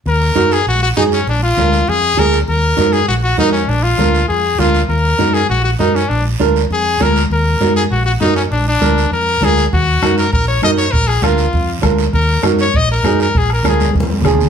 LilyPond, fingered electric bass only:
\new Staff \with { instrumentName = "Fingered electric bass" } { \clef bass \time 4/4 \key ees \minor \tempo 4 = 199 ees,4 ges,4 bes,,4 ges,4 | bes,,4 d,4 f,4 d,4 | ees,4 ges,4 bes,,4 f,4 | bes,,4 d,4 f,4 d,4 |
ees,4 ges,4 bes,,4 ges,4 | bes,,4 d,4 f,4 d,4 | ees,4 ges,4 bes,,4 ges,4 | bes,,4 d,4 f,4 d,4 |
ees,4 ges,4 bes,,4 ges,4 | bes,,4 d,4 f,4 d,4 | ees,4 ges,4 bes,,4 ges,4 | bes,,4 d,4 f,4 d,4 | }